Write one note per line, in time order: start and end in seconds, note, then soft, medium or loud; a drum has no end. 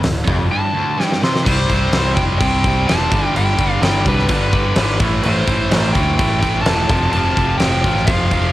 0.03 0.26 D1 medium
0.03 0.23 D2 medium
0.03 snare loud
0.03 open hi-hat medium
0.24 0.50 F1 loud
0.24 0.49 F2 loud
0.24 kick medium
0.29 0.50 F2 loud
0.51 0.74 G2 loud
0.51 1.04 A5 loud
0.77 0.98 D2 loud
0.99 1.22 G2 loud
0.99 snare medium
1.04 1.20 G5 loud
1.12 snare medium
1.24 1.46 C3 medium
1.24 1.46 C6 medium
1.24 snare medium
1.36 snare medium
1.43 1.68 C2 loud
1.43 1.71 C3 loud
1.43 2.11 C5 medium
1.43 kick medium
1.43 crash loud
1.43 crash medium
1.48 1.73 G3 loud
1.48 1.72 C4 loud
1.70 1.91 C2 medium
1.70 1.95 C3 medium
1.70 1.96 G3 medium
1.70 1.95 C4 medium
1.70 kick medium
1.70 crash medium
1.91 2.14 C2 medium
1.91 snare loud
1.91 crash medium
1.96 2.17 C3 loud
1.96 2.18 G3 loud
1.96 2.18 C4 loud
2.15 2.38 F1 medium
2.15 2.42 C3 medium
2.15 2.43 G3 loud
2.15 2.22 G5 loud
2.15 kick medium
2.15 crash medium
2.20 2.43 C4 loud
2.38 2.84 C2 loud
2.38 2.87 G5 loud
2.38 kick loud
2.38 crash medium
2.43 2.65 C3 loud
2.43 2.65 G3 loud
2.43 2.66 C4 loud
2.64 2.88 C3 medium
2.64 2.89 G3 medium
2.64 2.89 C4 medium
2.64 kick medium
2.64 crash medium
2.88 3.10 E1 medium
2.88 3.10 C3 medium
2.88 3.11 G3 loud
2.88 3.11 C4 loud
2.88 3.36 A5 loud
2.88 snare loud
2.88 crash medium
3.12 3.33 G1 medium
3.12 3.35 G2 medium
3.12 3.35 D3 loud
3.12 3.36 G3 medium
3.12 kick loud
3.12 crash medium
3.36 3.57 G1 medium
3.36 3.57 G2 loud
3.36 3.58 D3 medium
3.36 3.58 G3 loud
3.36 3.80 G5 loud
3.36 crash medium
3.58 3.80 G1 medium
3.58 3.80 G2 medium
3.58 3.80 D3 medium
3.58 3.81 G3 medium
3.58 kick medium
3.58 crash medium
3.81 4.03 G1 medium
3.81 4.04 G2 loud
3.81 4.04 D3 loud
3.81 4.05 G3 loud
3.81 4.04 G5 loud
3.81 snare loud
3.81 crash medium
4.05 4.27 C2 medium
4.05 4.27 G2 loud
4.05 4.28 D3 medium
4.05 4.28 G3 loud
4.05 4.97 B4 medium
4.05 kick medium
4.05 crash medium
4.19 snare soft
4.28 4.73 G1 loud
4.28 4.51 G2 loud
4.28 4.51 D3 loud
4.28 4.52 G3 loud
4.28 kick loud
4.28 crash medium
4.52 4.75 G2 medium
4.52 4.75 D3 medium
4.52 4.75 G3 loud
4.52 kick medium
4.52 crash medium
4.76 4.98 G#1 medium
4.76 4.98 G2 loud
4.76 4.99 D3 loud
4.76 4.99 G3 loud
4.76 snare loud
4.76 crash medium
4.81 5.01 G3 loud
4.99 5.22 A1 medium
4.99 5.21 A2 loud
4.99 5.22 E3 loud
4.99 5.23 A3 loud
4.99 kick loud
4.99 crash medium
5.23 5.46 A1 loud
5.23 5.45 A2 loud
5.23 5.45 E3 loud
5.23 5.47 A3 loud
5.23 5.96 C5 loud
5.23 crash medium
5.46 5.69 A1 medium
5.46 5.69 A2 medium
5.46 5.70 E3 medium
5.46 5.70 A3 medium
5.46 kick loud
5.46 crash medium
5.71 5.93 A1 loud
5.71 5.92 A2 medium
5.71 5.93 E3 loud
5.71 5.94 A3 loud
5.71 snare loud
5.71 crash medium
5.92 6.16 D2 medium
5.92 6.15 A2 medium
5.92 6.15 E3 loud
5.92 6.16 A3 loud
5.92 6.15 G5 medium
5.92 kick medium
5.92 crash medium
6.16 6.62 A1 loud
6.16 6.39 A2 medium
6.16 6.40 E3 loud
6.16 6.40 A3 loud
6.16 6.38 G5 medium
6.16 kick loud
6.16 crash medium
6.40 6.62 A2 medium
6.40 6.64 E3 medium
6.40 6.63 A3 loud
6.40 6.61 G5 loud
6.40 kick medium
6.40 crash medium
6.62 6.87 E1 medium
6.62 6.87 A2 loud
6.62 6.87 E3 loud
6.62 6.87 A3 loud
6.62 7.11 A5 loud
6.62 crash medium
6.66 snare loud
6.89 7.11 F1 medium
6.89 7.12 F2 loud
6.89 7.12 C3 loud
6.89 7.13 F3 loud
6.89 kick loud
6.89 crash medium
7.12 7.35 F1 medium
7.12 7.36 F2 loud
7.12 7.37 C3 loud
7.12 7.37 F3 loud
7.12 7.58 A5 loud
7.12 crash medium
7.37 7.59 F1 medium
7.37 7.59 F2 medium
7.37 7.60 C3 medium
7.37 7.61 F3 medium
7.37 kick medium
7.37 crash medium
7.58 7.82 F1 medium
7.58 7.83 F2 loud
7.58 7.84 C3 loud
7.58 8.08 G5 loud
7.58 snare loud
7.58 crash medium
7.62 7.83 F3 loud
7.84 8.06 A1 medium
7.84 8.06 F2 medium
7.84 8.07 C3 medium
7.84 8.08 F3 loud
7.84 kick medium
7.84 crash medium
7.97 snare soft
8.06 8.51 F1 loud
8.06 8.30 F2 loud
8.06 8.31 C3 loud
8.06 8.32 F3 loud
8.06 8.52 F5 medium
8.06 kick loud
8.06 crash medium
8.31 8.52 F2 medium
8.31 8.52 C3 medium
8.31 8.52 F3 medium
8.31 kick medium
8.31 crash medium